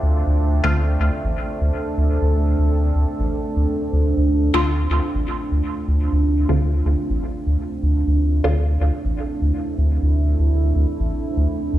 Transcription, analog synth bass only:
0.03 0.23 D2 medium
0.27 0.61 D2 loud
0.64 0.97 D2 medium
1.00 1.11 D2 medium
1.24 1.35 A1 medium
1.61 1.71 D2 medium
1.98 2.18 D2 medium
2.22 2.56 D2 loud
2.59 2.92 D2 medium
2.95 3.06 D2 medium
3.20 3.30 A1 medium
3.56 3.67 D2 medium
3.93 4.13 D2 medium
4.17 4.51 D2 loud
4.54 4.87 D2 medium
4.90 5.01 D2 medium
5.15 5.25 A1 medium
5.51 5.62 D2 medium
5.88 6.09 D2 medium
6.12 6.46 D2 loud
6.49 6.83 D2 medium
6.85 6.96 D2 medium
7.10 7.20 A1 medium
7.47 7.57 D2 medium
7.83 8.04 D2 medium
8.07 8.41 D2 loud
8.44 8.78 D2 medium
8.81 8.91 D2 medium
9.05 9.15 A1 medium
9.42 9.52 D2 medium
9.78 9.99 D2 medium
10.03 10.36 D2 loud
10.39 10.73 D2 medium
10.76 10.86 D2 medium
11.00 11.11 A1 medium
11.37 11.47 D2 medium
11.73 11.79 D2 medium

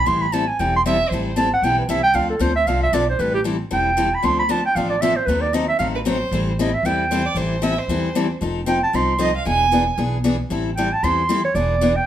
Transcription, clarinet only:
0.07 0.23 C6 loud
0.21 0.35 B5 loud
0.33 0.50 A5 medium
0.48 0.61 G#5 medium
0.60 0.74 G5 medium
0.77 0.82 C6 loud
1.38 1.51 A5 medium
1.54 1.66 F#5 loud
1.64 1.78 G5 loud
1.79 1.91 B4 medium
1.90 2.03 E5 medium
2.03 2.17 G5 loud
2.16 2.29 F5 loud
2.30 2.43 A4 medium
2.41 2.55 C5 medium
2.56 2.68 E5 loud
2.67 2.82 F5 loud
2.83 2.96 E5 medium
2.94 3.09 D5 medium
3.10 3.22 C5 loud
3.20 3.34 B4 medium
3.35 3.41 G4 loud
3.73 4.16 G5 medium
4.14 4.26 B5 loud
4.25 4.39 C6 loud
4.39 4.52 B5 loud
4.51 4.65 A5 medium
4.66 4.77 G5 loud
4.76 4.89 F5 medium
4.90 5.03 D5 medium
5.02 5.18 E5 loud
5.17 5.28 C5 medium
5.26 5.43 B4 medium
5.41 5.56 D5 medium
5.54 5.68 D#5 medium
5.68 5.78 E5 medium
5.79 5.88 F5 medium
6.60 6.76 D#5 medium
6.74 6.87 E5 loud
6.86 7.27 G5 medium
8.68 8.82 G5 medium
8.84 8.97 A5 medium
8.96 9.36 C6 medium
10.77 10.95 G5 medium
10.93 11.05 A5 loud
11.04 11.44 C6 loud
11.45 11.57 C#5 loud
11.55 11.98 D5 medium
11.96 12.06 G5 loud

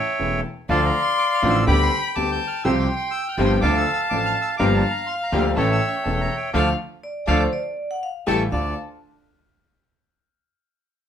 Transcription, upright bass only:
0.20 0.40 E1 medium
0.69 0.90 D2 loud
1.43 1.63 A1 loud
1.67 1.88 D2 loud
2.16 2.37 D2 medium
2.65 2.86 C2 loud
3.38 3.58 G1 loud
3.62 3.83 D2 loud
4.11 4.32 A1 medium
4.60 4.80 G1 loud
5.32 5.53 D2 loud
5.57 5.77 A1 loud
6.06 6.26 E1 medium
6.54 6.72 D2 medium
7.28 7.46 D2 medium
8.27 8.45 A1 medium
8.52 8.72 D2 medium

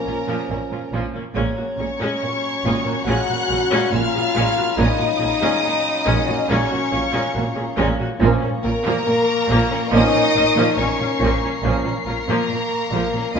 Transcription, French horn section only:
0.00 0.93 A#3 medium
1.78 3.03 C#4 medium
3.06 3.90 F#4 medium
3.92 4.78 F4 loud
4.77 6.49 D#4 loud
6.49 7.78 C#4 medium
8.64 9.89 A#3 loud
9.92 10.78 D#4 loud
10.78 11.64 C#4 medium
12.07 13.32 A#3 medium
13.35 13.40 D#4 loud

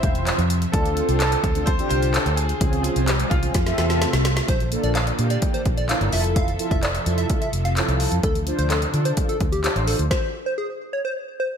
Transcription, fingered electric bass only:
0.03 0.30 E1 loud
0.38 0.65 F2 loud
0.74 1.00 D2 loud
1.09 1.35 C2 medium
1.44 1.79 D2 loud
1.91 2.17 C2 medium
2.26 2.52 D2 medium
2.61 2.87 C#2 loud
2.96 3.22 C2 medium
3.31 3.49 C2 medium
3.55 3.72 F2 loud
3.78 4.05 E2 medium
4.13 4.40 C2 medium
4.49 4.75 A#1 medium
4.84 5.10 A#1 medium
5.19 5.36 A#2 loud
5.66 5.92 A#1 medium
6.01 6.10 G1 medium
6.13 6.56 F1 loud
6.71 6.97 F1 medium
7.06 7.24 F2 loud
7.53 7.80 F1 medium
7.88 8.06 C2 loud
8.12 8.21 F2 medium
8.24 8.50 D2 loud
8.59 8.85 D2 loud
8.94 9.11 D3 loud
9.41 9.67 D2 medium
9.76 9.93 A1 medium
9.99 10.08 D2 medium

